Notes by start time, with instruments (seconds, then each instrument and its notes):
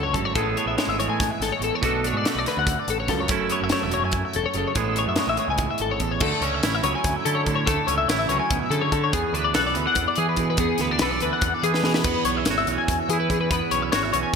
Already playing: picked electric bass C#2, clean electric guitar F#2 D3 A3 C#4 E4
0.03 clean electric guitar C#5
0.13 picked electric bass G#1, clean electric guitar F#2 A4, kick, closed hi-hat
0.25 clean electric guitar C#5
0.35 picked electric bass A1, clean electric guitar A2 G#3 B3 G#4 A4, kick, closed hi-hat
0.57 clean electric guitar B3 C#5, closed hi-hat
0.66 picked electric bass A1, clean electric guitar E5
0.78 clean electric guitar G#3 C#5, snare, closed hi-hat
0.87 picked electric bass G#1, clean electric guitar E5
0.99 clean electric guitar E3 C#5, closed hi-hat
1.08 picked electric bass A2, clean electric guitar G#5
1.20 kick, snare, closed hi-hat
1.31 clean electric guitar E5
1.40 picked electric bass G#1, clean electric guitar A4, snare, closed hi-hat
1.52 clean electric guitar C#5
1.60 picked electric bass A1, clean electric guitar E2 A4, closed hi-hat
1.75 clean electric guitar C#5
1.81 picked electric bass B1, clean electric guitar B2 A3 D4 F#4 A4, kick, closed hi-hat
2.04 clean electric guitar D4 C#5, closed hi-hat
2.13 picked electric bass G#2, clean electric guitar D5
2.25 clean electric guitar A3 B4, snare, closed hi-hat
2.35 picked electric bass B1, clean electric guitar D5
2.46 clean electric guitar D3 B4, snare, closed hi-hat
2.57 picked electric bass D2, clean electric guitar F#5
2.67 kick, closed hi-hat
2.79 clean electric guitar D5
2.88 picked electric bass A1, clean electric guitar A4, closed hi-hat
3.00 clean electric guitar C#5
3.08 picked electric bass C#2, clean electric guitar F#2 A4, kick, snare, closed hi-hat
3.20 clean electric guitar C#5
3.28 picked electric bass F#1, clean electric guitar F#2 A3 C#4 E4 A4, kick, closed hi-hat
3.50 clean electric guitar B3 C#5, closed hi-hat
3.60 picked electric bass F#1, clean electric guitar C#4 E5
3.69 clean electric guitar A3 C#5, snare, closed hi-hat
3.83 picked electric bass E1, clean electric guitar E5
3.91 clean electric guitar F#3 C#5, closed hi-hat
4.04 picked electric bass F#2, clean electric guitar G#5
4.12 kick, closed hi-hat
4.25 clean electric guitar E5
4.33 picked electric bass E1, clean electric guitar A4, closed hi-hat
4.46 clean electric guitar C#5
4.54 picked electric bass F#1, clean electric guitar C#3 A4, closed hi-hat
4.67 clean electric guitar C#5
4.75 picked electric bass A1, clean electric guitar A2 G#3 B3 G#4 A4, kick, closed hi-hat
4.96 clean electric guitar B3 C#5, closed hi-hat
5.07 picked electric bass F#2, clean electric guitar E5
5.16 clean electric guitar G#3 C#5, snare, closed hi-hat
5.27 picked electric bass A1, clean electric guitar E5
5.37 clean electric guitar E3 C#5, closed hi-hat
5.48 picked electric bass C#2, clean electric guitar G#5
5.58 kick, closed hi-hat
5.71 clean electric guitar E5
5.78 picked electric bass G#1, clean electric guitar A4, closed hi-hat
5.91 clean electric guitar C#5
5.99 picked electric bass A1, clean electric guitar E2 A4, kick, closed hi-hat
6.12 clean electric guitar C#5
6.20 picked electric bass D2, clean electric guitar D3 A3 A4, kick, crash
6.41 picked electric bass C#2, clean electric guitar C#4 C#5, closed hi-hat
6.54 clean electric guitar E5
6.63 picked electric bass A1, clean electric guitar E4 C#5, snare, closed hi-hat
6.75 clean electric guitar E5
6.83 picked electric bass C#2, clean electric guitar F#3 B3 C#5, closed hi-hat
6.95 clean electric guitar C#4 G#5
7.04 picked electric bass D2, kick, closed hi-hat
7.16 clean electric guitar E5
7.25 picked electric bass D3, clean electric guitar E4 A4, closed hi-hat
7.35 clean electric guitar C#5
7.45 clean electric guitar A2 A4, picked electric bass D3, kick, closed hi-hat
7.56 clean electric guitar C#5
7.66 picked electric bass D2, clean electric guitar D3 A3 A4, kick, closed hi-hat
7.87 picked electric bass C#2, clean electric guitar C#4 C#5, closed hi-hat
7.98 clean electric guitar E5
8.08 picked electric bass A1, clean electric guitar E4 C#5, snare, closed hi-hat
8.19 clean electric guitar E5
8.28 picked electric bass C#2, clean electric guitar F#3 C#4 C#5, closed hi-hat
8.40 clean electric guitar G#5
8.50 picked electric bass D2, clean electric guitar B2, kick, closed hi-hat
8.60 clean electric guitar E5
8.70 clean electric guitar C#3 A4, picked electric bass D3, closed hi-hat
8.81 clean electric guitar C#5
8.92 picked electric bass D3, clean electric guitar D3 A4, kick, closed hi-hat
9.04 clean electric guitar C#5
9.12 clean electric guitar E2 B3 G#4, picked electric bass E2, kick, closed hi-hat
9.33 picked electric bass D2, clean electric guitar D4 B4, closed hi-hat
9.44 clean electric guitar D5
9.54 picked electric bass B1, clean electric guitar A4 B4, snare, closed hi-hat
9.67 clean electric guitar D5
9.74 picked electric bass D2, clean electric guitar E3 B3 B4, closed hi-hat
9.85 clean electric guitar D4 F#5
9.95 picked electric bass E2, kick, closed hi-hat
10.08 clean electric guitar D5
10.16 picked electric bass E3, clean electric guitar G#4, closed hi-hat
10.29 clean electric guitar B4
10.36 clean electric guitar B2 G#4, picked electric bass E3, kick, closed hi-hat
10.50 clean electric guitar B4
10.57 picked electric bass E2, clean electric guitar E2 B3 G#4, kick, closed hi-hat
10.78 picked electric bass D2, clean electric guitar B3 B4, snare, closed hi-hat
10.91 clean electric guitar D4 D5
10.99 picked electric bass B1, clean electric guitar A4 B4, snare, closed hi-hat
11.11 clean electric guitar D5
11.20 picked electric bass D2, clean electric guitar E3 D4 B4, closed hi-hat
11.33 clean electric guitar F#5
11.41 picked electric bass E2, kick, closed hi-hat
11.54 clean electric guitar D5
11.63 picked electric bass E3, clean electric guitar G#4, closed hi-hat
11.74 clean electric guitar B4, snare
11.83 clean electric guitar B2 G#4, picked electric bass E3, snare
11.94 clean electric guitar B4, snare
12.04 picked electric bass E2, clean electric guitar E2 B3 B4, kick, closed hi-hat, crash
12.25 picked electric bass B1, clean electric guitar B3 C#5, closed hi-hat
12.37 clean electric guitar C#4 E5
12.45 picked electric bass G#1, clean electric guitar C#5, snare, closed hi-hat
12.51 clean electric guitar F#4
12.58 clean electric guitar E5
12.67 picked electric bass B1, clean electric guitar C#5, closed hi-hat
12.71 clean electric guitar E3 C#4
12.78 clean electric guitar G#5
12.88 picked electric bass E2, kick, closed hi-hat
13.00 clean electric guitar E5
13.09 picked electric bass E3, clean electric guitar G#4, closed hi-hat
13.13 clean electric guitar E4
13.20 clean electric guitar B4
13.30 clean electric guitar E2 G#4, picked electric bass E3, kick, closed hi-hat
13.41 clean electric guitar B4
13.51 picked electric bass E2, clean electric guitar E2 B3 B4, kick, closed hi-hat
13.71 picked electric bass B1, clean electric guitar C#4 C#5, closed hi-hat
13.82 clean electric guitar E5
13.92 picked electric bass G#1, clean electric guitar F#4 C#5, snare, closed hi-hat
14.03 clean electric guitar E5
14.13 picked electric bass B1, clean electric guitar E3 C#4 C#5, closed hi-hat
14.23 clean electric guitar G#5